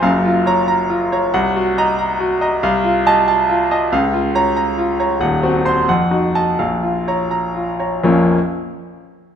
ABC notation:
X:1
M:6/8
L:1/8
Q:3/8=92
K:Bbm
V:1 name="Grand piano"
f F [db] b F [db] | g G [eb] b G [eb] | f F [e=a] a F [ea] | f F [db] b F [db] |
g G [cc'] g G [e=a] | f F [db] b F [db] | [B,,,F,,F,B,DF] z4 z |]
V:2 name="Grand piano" clef=bass
[G,,,G,,]6 | C,,6 | C,,6 | D,,6 |
[E,,,E,,] C2 F,, E2 | B,,,6 | z6 |]